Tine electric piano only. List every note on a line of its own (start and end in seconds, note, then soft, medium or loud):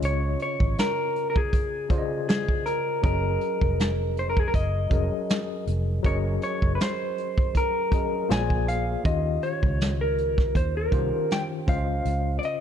0.00 1.02 C#3 medium
0.00 1.02 C#4 medium
0.00 1.03 F4 medium
0.00 1.03 C#5 medium
0.00 1.03 D#5 loud
1.89 2.93 C#3 medium
1.89 2.93 C#4 medium
1.89 2.94 F4 medium
1.89 2.94 C5 medium
1.89 1.98 D5 medium
1.98 2.98 D#5 medium
3.02 4.41 F#3 medium
3.02 4.41 C#4 medium
3.02 4.42 G#4 medium
3.02 4.42 A#4 medium
3.02 4.42 D#5 medium
4.90 5.94 F#3 medium
4.90 5.95 C#4 medium
4.90 5.95 G#4 medium
4.90 5.95 A#4 medium
4.90 5.96 D#5 medium
6.03 7.42 F#3 medium
6.03 7.42 C#4 medium
6.03 7.42 G#4 medium
6.03 7.42 A#4 medium
6.03 7.43 D#5 medium
7.91 8.29 F#3 medium
7.91 8.30 C#4 medium
7.91 8.29 G#4 medium
7.91 8.30 A#4 medium
7.91 8.31 D#5 medium
8.29 8.98 A#3 medium
8.29 8.99 F4 medium
8.29 8.99 G#4 medium
8.29 8.99 C5 medium
8.29 9.00 D5 medium
9.04 10.42 D#3 medium
9.04 10.42 C#4 medium
9.04 10.43 F4 medium
9.04 10.43 G4 medium
9.04 10.44 D#5 medium
10.92 11.68 D#3 medium
10.92 11.66 C#4 medium
10.92 11.67 F4 medium
10.92 11.68 G4 medium
10.92 11.67 C5 medium
11.66 12.60 C#3 medium
11.66 12.60 C#4 medium
11.66 12.60 F4 medium
11.66 12.60 C5 medium
11.66 12.60 D#5 medium